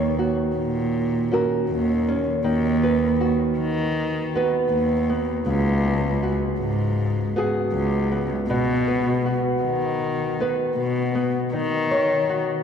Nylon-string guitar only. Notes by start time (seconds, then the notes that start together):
Already playing: D#3 C#5
0.19 F#4
1.32 C#4 F#4 A#4
2.08 C#4
2.44 D#3
2.83 B4
3.21 F#4
4.35 B3 F#4 B4
5.10 B3
5.46 C#3
5.84 G#4
6.23 F#4
7.36 B3 F#4 G#4
8.12 B3
8.50 B2
8.88 B4
9.26 F#4
10.40 B3 F#4 B4
11.15 B3
11.53 D#3
11.91 C#5
12.29 F#4